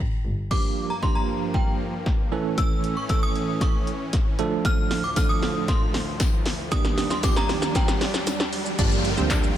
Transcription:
0.00 double bass A1, kick
0.25 double bass G1
0.51 supersaw synth G2 F3 A#3, tine electric piano F3 A#3 D4 G4, synth bell D6, kick, snare, crash, riser
0.90 synth bell A#5
1.02 tine electric piano F3 A#3 D4 G4, synth bell C6, kick, snare
1.15 synth bell A#5
1.54 synth bell G5, kick, snare
2.06 kick, snare
2.32 supersaw synth A2 E3 C#4, tine electric piano E3 A3 C#4 A4
2.58 synth bell E6, kick, snare, closed hi-hat
2.84 closed hi-hat
2.97 synth bell C#6
3.09 tine electric piano E3 A3 C#4 A4, synth bell E6, kick, snare, closed hi-hat
3.23 synth bell D#6
3.35 closed hi-hat
3.61 synth bell C#6, kick, snare, closed hi-hat
3.87 closed hi-hat
4.13 kick, snare, closed hi-hat
4.39 supersaw synth D2 A2 F3, tine electric piano F3 A3 D4 A4, closed hi-hat
4.65 synth bell F6, kick, snare, closed hi-hat
4.91 snare, open hi-hat
5.04 synth bell D6
5.16 tine electric piano F3 A3 D4 A4, synth bell F6, kick, snare, closed hi-hat, tambourine
5.29 synth bell D#6
5.43 snare, open hi-hat
5.68 synth bell C6, kick, snare, closed hi-hat
5.94 snare, open hi-hat
6.20 kick, snare, closed hi-hat, tambourine
6.46 snare, open hi-hat
6.71 supersaw synth D#2 G3 D4, tine electric piano D#3 A#3 D4 G4, synth bell D#6, kick, snare, closed hi-hat, shaker
6.85 snare, shaker
6.98 snare, open hi-hat, shaker
7.10 synth bell C6, snare, shaker
7.23 tine electric piano D#3 A#3 D4 G4, synth bell D6, kick, snare, closed hi-hat, tambourine, shaker
7.36 synth bell A#5, snare, shaker
7.49 snare, open hi-hat, shaker
7.62 snare, shaker
7.75 synth bell G5, kick, snare, closed hi-hat, shaker
7.88 snare, shaker
8.01 snare, open hi-hat, shaker
8.14 snare, shaker
8.27 snare, closed hi-hat, tambourine, shaker
8.40 snare, shaker
8.53 open hi-hat, shaker
8.66 shaker
8.79 double bass G1, tine electric piano F3 G3 A#3 D4 G4, synth pluck D4 D5, supersaw synth F4 A#4 G5, kick, closed hi-hat, crash, downlifter, shaker
8.92 shaker
9.05 open hi-hat, shaker
9.17 double bass D2, tine electric piano F3 G3 A#3 D4 G4, synth pluck C4 C5, shaker
9.30 synth pluck D4 D5, kick, snare, clap, closed hi-hat, tambourine, shaker
9.43 shaker

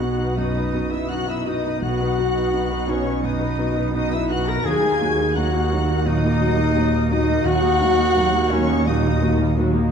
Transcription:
Already playing: double bass section B1, felt piano B1 B3 D#4 F#4, cello section B2, clarinet F#4, french horn section F#4, violin section F#5 F#6, flute F#5
0.00 viola section B3 F#4, felt piano B3 D#4 F#4
0.18 viola section D#4 B4
0.36 felt piano F#2, viola section B3 F#4, french horn section D#4, clarinet D#4, flute D#5, violin section D#5 D#6
0.55 viola section D#4 B4
0.73 viola section B3 F#4, felt piano B3 D#4 F#4
0.90 viola section D#4 B4, clarinet E4, french horn section E4, flute E5, violin section E5 E6
1.09 viola section B3 F#4, felt piano B3 D#4 F#4, french horn section F#4, clarinet F#4, flute F#5, violin section F#5 F#6
1.27 viola section D#4 B4, french horn section E4, clarinet E4, violin section E5 E6, flute E5
1.45 viola section B3 F#4, felt piano B3 D#4 F#4, french horn section D#4, clarinet D#4, violin section D#5 D#6, flute D#5
1.63 viola section D#4 B4
1.81 felt piano B1, double bass section B1, cello section B2, viola section B3 F#4, french horn section F#4, clarinet F#4, violin section F#5 F#6, flute F#5
2.00 viola section D#4 B4
2.17 viola section B3 F#4, felt piano B3 D#4 F#4
2.35 viola section D#4 B4
2.52 viola section B3 F#4, felt piano B3 D#4 F#4
2.70 viola section D#4 B4
2.88 felt piano B3 D#4 F#4, viola section B3 F#4, french horn section C#4, clarinet C#4, flute C#5, violin section C#5 C#6
3.04 viola section D#4 B4
3.23 felt piano F#2, viola section B3 F#4, french horn section D#4, clarinet D#4, flute D#5, violin section D#5 D#6
3.39 viola section D#4 B4
3.58 viola section B3 F#4, felt piano B3 D#4 F#4
3.76 viola section D#4 B4
3.93 viola section B3 F#4, felt piano B3 D#4 F#4, clarinet D#4, french horn section D#4, flute D#5, violin section D#5 D#6
4.11 viola section D#4 B4, clarinet E4, french horn section E4, flute E5, violin section E5 E6
4.29 felt piano B3 D#4 F#4, viola section B3 F#4, clarinet F#4, french horn section F#4, flute F#5, violin section F#5 F#6
4.47 viola section D#4 B4, clarinet A#4, french horn section A#4, violin section A#5 A#6, flute A#5
4.64 felt piano D#2, cello section D#2, double bass section D#2, viola section F#3 F#4, clarinet G#4, french horn section G#4, flute G#5, violin section G#5 G#6
4.83 viola section A#3 D#4
5.00 viola section F#3 F#4, felt piano A#3 D#4 F#4
5.18 viola section A#3 D#4
5.34 viola section F#3 F#4, felt piano A#3 D#4 F#4, clarinet F#4, french horn section F#4, flute F#5, violin section F#5 F#6
5.53 viola section A#3 D#4
5.71 viola section F#3 F#4, felt piano A#3 D#4 F#4
5.88 viola section A#3 D#4
6.05 felt piano A#2, viola section F#3 F#4, clarinet D#4, french horn section D#4, violin section D#5 D#6, flute D#5
6.24 viola section A#3 D#4
6.40 viola section F#3 F#4, felt piano A#3 D#4 F#4
6.57 viola section A#3 D#4
6.75 viola section F#3 F#4, felt piano A#3 D#4 F#4
6.92 viola section A#3 D#4
7.10 viola section F#3 F#4, felt piano A#3 D#4 F#4, french horn section D#4, clarinet D#4, flute D#5, violin section D#5 D#6
7.27 viola section A#3 D#4
7.44 felt piano D#2, double bass section D#2, cello section D#2, viola section F#3 F#4, french horn section F#4, clarinet F#4, flute F#5, violin section F#5 F#6
7.61 viola section A#3 D#4
7.80 viola section F#3 F#4, felt piano A#3 D#4 F#4
7.97 viola section A#3 D#4
8.16 viola section F#3 F#4, felt piano A#3 D#4 F#4
8.33 viola section A#3 D#4
8.50 viola section F#3 F#4, felt piano A#3 D#4 F#4, french horn section C#4, clarinet C#4, flute C#5, violin section C#5 C#6
8.68 viola section A#3 D#4
8.86 felt piano A#2, viola section F#3 F#4, french horn section D#4, clarinet D#4, violin section D#5 D#6, flute D#5
9.03 viola section A#3 D#4
9.21 viola section F#3 F#4, felt piano A#3 D#4 F#4
9.38 viola section A#3 D#4
9.56 viola section F#3 F#4, felt piano A#3 D#4 F#4
9.73 viola section A#3 D#4

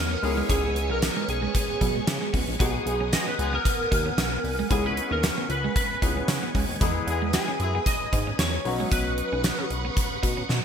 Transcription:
Already playing: analog synth bass E2, grand piano G#3 B3 D#4 E4 G#4, string machine B3 C#5 G#5 D#6, lead electric guitar A#4
0.11 muted clean electric guitar stroke
0.22 analog synth bass C#2, grand piano G#3 B3 C#4 D#4 G#4, string machine C#6, open hi-hat
0.30 grand piano E4
0.37 clean electric guitar G#3
0.49 analog synth bass C#2, clean electric guitar C#4, lead electric guitar G#4, kick, closed hi-hat
0.65 lead electric guitar G#4
0.75 muted clean electric guitar stroke, closed hi-hat
0.90 analog synth bass B1, clean electric guitar B3, lead electric guitar A#4
1.02 snare, closed hi-hat, tambourine
1.16 clean electric guitar G#3
1.28 analog synth bass B1, lead electric guitar G#4, muted clean electric guitar stroke, closed hi-hat
1.42 clean electric guitar G#3
1.55 lead electric guitar G#4, muted clean electric guitar stroke, kick, closed hi-hat
1.81 analog synth bass B2, clean electric guitar F#3, kick, closed hi-hat
1.95 clean electric guitar G#3
2.07 analog synth bass C#3, muted clean electric guitar stroke, snare, closed hi-hat, tambourine
2.21 clean electric guitar G#3
2.33 analog synth bass C#2, clean electric guitar B3, kick, open hi-hat
2.48 analog synth bass A#1
2.59 analog synth bass B1, grand piano G#3 B3 D#4 F#4 G#4, clean electric guitar B3, lead electric guitar G#4, string machine F#5 G#5 D#6, kick, closed hi-hat
2.86 analog synth bass B1, horn section G#3 B3 D#4 G#4, muted clean electric guitar stroke, closed hi-hat
3.01 clean electric guitar C#4
3.13 horn section G#3 B3 D#4 G#4, lead electric guitar D#5, snare, closed hi-hat, tambourine
3.27 clean electric guitar C#4, lead electric guitar B4
3.39 analog synth bass C#2, horn section G#3 B3 D#4 G#4, muted clean electric guitar stroke, closed hi-hat
3.53 clean electric guitar B3, lead electric guitar A#4
3.65 muted clean electric guitar stroke, kick, closed hi-hat
3.91 analog synth bass D#2, clean electric guitar D#4, kick, closed hi-hat
4.06 clean electric guitar C#4
4.18 analog synth bass B1, clean electric guitar B3, snare, closed hi-hat, tambourine
4.33 muted clean electric guitar stroke
4.44 analog synth bass C2, open hi-hat
4.59 clean electric guitar G#3
4.70 analog synth bass C#2, grand piano G#3 B3 C#4 E4 G#4, clean electric guitar C#4, lead electric guitar G#4, string machine C#6, kick, closed hi-hat
4.86 lead electric guitar B4
4.97 muted clean electric guitar stroke, closed hi-hat
5.11 analog synth bass D#2, clean electric guitar B3, lead electric guitar A#4
5.23 snare, closed hi-hat, tambourine
5.37 clean electric guitar B3
5.49 analog synth bass C#2, lead electric guitar B4, muted clean electric guitar stroke, closed hi-hat
5.64 clean electric guitar G#3
5.76 lead electric guitar B4, muted clean electric guitar stroke, kick, closed hi-hat
6.02 analog synth bass C#2, grand piano G#3 B3 C#4 E4 G#4, clean electric guitar D#4, kick, closed hi-hat
6.17 clean electric guitar C#4
6.28 analog synth bass C#3, muted clean electric guitar stroke, snare, closed hi-hat, tambourine
6.43 clean electric guitar B3
6.55 analog synth bass C#2, clean electric guitar G#3, kick, open hi-hat
6.69 analog synth bass D#2
6.80 analog synth bass E2, clean electric guitar E3, grand piano G#3 B3 D#4 E4 G#4, string machine B4 D#6, kick, closed hi-hat
7.07 analog synth bass E2, horn section G#3 E4 G#4, muted clean electric guitar stroke, closed hi-hat
7.22 clean electric guitar G#3
7.33 horn section G#3 E4 G#4, lead electric guitar G#4, snare, closed hi-hat, tambourine
7.48 clean electric guitar C#4
7.60 analog synth bass F#2, horn section G#3 E4 G#4, muted clean electric guitar stroke, closed hi-hat
7.75 clean electric guitar B3
7.86 lead electric guitar D#5, muted clean electric guitar stroke, kick, closed hi-hat
8.13 analog synth bass G#2, clean electric guitar D#4, kick, closed hi-hat
8.27 clean electric guitar C#4
8.39 analog synth bass E2, clean electric guitar B3, lead electric guitar C#5, snare, closed hi-hat, tambourine
8.54 muted clean electric guitar stroke
8.65 analog synth bass B1, grand piano F#3 B3 C#4 D#4 F#4, string machine B4 F#5 C#6 D#6, open hi-hat
8.80 clean electric guitar G#3
8.91 analog synth bass B1, clean electric guitar B3, lead electric guitar B4, kick, closed hi-hat
9.18 muted clean electric guitar stroke, closed hi-hat
9.32 analog synth bass B1, clean electric guitar C#4
9.44 snare, closed hi-hat, tambourine
9.59 clean electric guitar C#4
9.70 analog synth bass B1, muted clean electric guitar stroke, closed hi-hat
9.85 clean electric guitar B3
9.96 muted clean electric guitar stroke, kick, closed hi-hat
10.23 analog synth bass B2, clean electric guitar D#4, kick, closed hi-hat
10.37 clean electric guitar C#4
10.49 analog synth bass B2, muted clean electric guitar stroke, snare

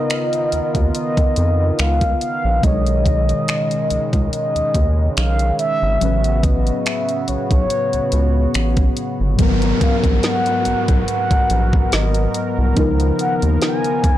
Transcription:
Already playing: synth keys C#3 B3 D#4 F4 A#4, analog synth pad D#3 B3 F4 A#4, soft synth lead D#5
0.10 finger snap, closed hi-hat
0.33 closed hi-hat
0.52 analog synth bass D#2, closed hi-hat
0.75 analog synth bass D#2, kick, closed hi-hat
0.95 soft synth lead D#5, closed hi-hat
1.17 analog synth bass F2, kick, closed hi-hat
1.36 analog synth bass F2, closed hi-hat
1.79 analog synth bass C#2, soft synth lead F5, finger snap, closed hi-hat
2.01 kick, closed hi-hat
2.21 soft synth lead F5, closed hi-hat
2.45 analog synth bass A#1
2.60 analog synth bass B1, synth keys B2 G#3 D4, analog synth pad C#3 D#3 G#3, soft synth lead D#5, kick, closed hi-hat
2.67 synth keys C#5
2.71 synth keys D#3
2.86 closed hi-hat
3.06 kick, closed hi-hat
3.29 closed hi-hat
3.48 finger snap, closed hi-hat
3.71 closed hi-hat
3.90 analog synth bass C#2, closed hi-hat
4.13 analog synth bass C#2, kick, closed hi-hat
4.33 soft synth lead D#5, closed hi-hat
4.56 analog synth bass D#2, closed hi-hat
4.75 analog synth bass D#2, kick, closed hi-hat
5.17 analog synth bass B1, soft synth lead F5, finger snap, closed hi-hat
5.39 closed hi-hat
5.59 soft synth lead E5, closed hi-hat
5.82 analog synth bass G#1
5.99 analog synth bass A1, synth keys A2 F#3 C#4, analog synth pad B3 F#4, closed hi-hat
6.04 synth keys B4
6.24 closed hi-hat
6.43 soft synth lead D#5, kick, closed hi-hat
6.67 closed hi-hat
6.86 soft synth lead E5, finger snap, closed hi-hat
7.09 closed hi-hat
7.28 analog synth bass B1, soft synth lead C#5, closed hi-hat
7.51 analog synth bass B1, soft synth lead C#5, kick, closed hi-hat
7.70 closed hi-hat
7.93 analog synth bass C#2, closed hi-hat
8.12 analog synth bass C#2, closed hi-hat
8.54 analog synth bass A1, finger snap, closed hi-hat
8.77 kick, closed hi-hat
8.97 closed hi-hat
9.20 analog synth bass G1
9.36 analog synth bass G#1, synth keys G#2 F#3, analog synth pad B3 F#4 A#4, kick, closed hi-hat, downlifter
9.40 synth keys B3 A#4
9.62 closed hi-hat
9.81 soft synth lead F5, kick, closed hi-hat
10.04 analog synth bass A#1, kick, closed hi-hat
10.23 soft synth lead F#5, snare, closed hi-hat
10.46 closed hi-hat
10.65 analog synth bass B1, closed hi-hat
10.88 analog synth bass B1, kick, closed hi-hat
11.08 soft synth lead F#5, closed hi-hat
11.31 analog synth bass A#1, kick, closed hi-hat
11.50 analog synth bass A#1, closed hi-hat
11.73 kick
11.92 analog synth bass G#1, soft synth lead D#5, snare, closed hi-hat
12.14 closed hi-hat
12.34 closed hi-hat
12.58 analog synth bass C2
12.74 analog synth bass C#2, synth keys C#3 B3 D#4, analog synth pad D#3 F3 B3, kick, closed hi-hat
12.79 synth keys F3 A#4
13.00 closed hi-hat
13.19 soft synth lead F#5, closed hi-hat
13.42 analog synth bass D#2, closed hi-hat
13.62 soft synth lead G#5, snare, closed hi-hat
13.84 closed hi-hat
14.04 analog synth bass F2, kick, closed hi-hat

